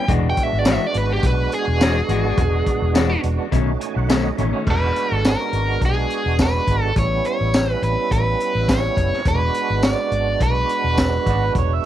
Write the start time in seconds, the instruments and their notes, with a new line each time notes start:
0.08 fingered electric bass E1, clean electric guitar E3 G#3 D4 F#4, tonewheel organ G#3 B3 D4 F#4, kick, closed hi-hat
0.30 overdriven electric guitar G5
0.37 kick, closed hi-hat
0.43 overdriven electric guitar E5
0.53 fingered electric bass G#1
0.59 overdriven electric guitar D5
0.65 clean electric guitar E3 G#3 D4 F#4, snare, closed hi-hat, tambourine
0.72 overdriven electric guitar E5
0.87 overdriven electric guitar D5
0.94 fingered electric bass G#1, overdriven electric guitar B4, closed hi-hat
1.13 overdriven electric guitar G4
1.23 fingered electric bass B1, overdriven electric guitar B4, kick, closed hi-hat
1.52 overdriven electric guitar G#4, closed hi-hat
1.67 fingered electric bass E1
1.81 clean electric guitar E3 G#3 D4 F#4, snare, closed hi-hat, tambourine
2.09 fingered electric bass G#1, clean electric guitar E3 G#3 D4 F#4, closed hi-hat
2.25 clean electric guitar G#3 D4 F#4
2.38 fingered electric bass E1, kick, closed hi-hat
2.66 kick, closed hi-hat
2.82 fingered electric bass E1
2.94 clean electric guitar E3 G#3 D4 F#4, snare, closed hi-hat, tambourine
3.24 fingered electric bass E1, closed hi-hat
3.51 fingered electric bass B1, clean electric guitar B2 D#3 A3 C#4, tonewheel organ A3 C#4 D#4 F#4, kick, closed hi-hat
3.80 tonewheel organ G#5, closed hi-hat
3.96 fingered electric bass B1, tonewheel organ F#5
4.09 clean electric guitar B2 D#3 A3 C#4, tonewheel organ D#5, snare, closed hi-hat, tambourine
4.37 fingered electric bass A1, clean electric guitar B2 D#3 A3 C#4, tonewheel organ C#5, closed hi-hat
4.53 clean electric guitar D#3 A3 C#4
4.65 fingered electric bass E1, tonewheel organ G#3 B3 D4 F#4, kick, crash
4.70 overdriven electric guitar B4
4.96 closed hi-hat
5.12 fingered electric bass G#1, overdriven electric guitar A4
5.25 snare, closed hi-hat, tambourine
5.29 overdriven electric guitar A#4
5.53 fingered electric bass G#1, closed hi-hat
5.81 fingered electric bass B1, overdriven electric guitar G#4, kick, closed hi-hat
6.10 closed hi-hat
6.26 fingered electric bass E1
6.39 overdriven electric guitar B4, kick, snare, closed hi-hat, tambourine
6.67 fingered electric bass G#1, kick, closed hi-hat
6.82 overdriven electric guitar A4
6.95 fingered electric bass A1, tonewheel organ G3 B3 C#4 E4, overdriven electric guitar C#5, kick, closed hi-hat
7.25 overdriven electric guitar C#5, closed hi-hat
7.41 fingered electric bass A1
7.54 snare, closed hi-hat, tambourine
7.71 overdriven electric guitar B4
7.82 fingered electric bass A1, overdriven electric guitar B4, closed hi-hat
8.11 fingered electric bass A1, overdriven electric guitar B4, kick, closed hi-hat
8.40 closed hi-hat
8.55 fingered electric bass A1
8.68 overdriven electric guitar C#5, kick, snare, closed hi-hat, tambourine
8.97 fingered electric bass F#1, kick, closed hi-hat
9.13 snare
9.24 fingered electric bass E1, tonewheel organ G#3 B3 D4 F#4, overdriven electric guitar B4, kick, closed hi-hat
9.54 closed hi-hat
9.70 fingered electric bass G#1
9.83 overdriven electric guitar D5, snare, closed hi-hat, tambourine
10.11 fingered electric bass G#1, closed hi-hat
10.40 fingered electric bass B1, overdriven electric guitar B4, kick, closed hi-hat
10.69 closed hi-hat
10.84 fingered electric bass E1
10.98 kick, snare, closed hi-hat, tambourine
11.26 fingered electric bass G#1, harmonica B3 D4 F#4, kick, closed hi-hat
11.46 harmonica B4
11.55 fingered electric bass E1, harmonica C#5, kick, closed hi-hat
11.74 harmonica E5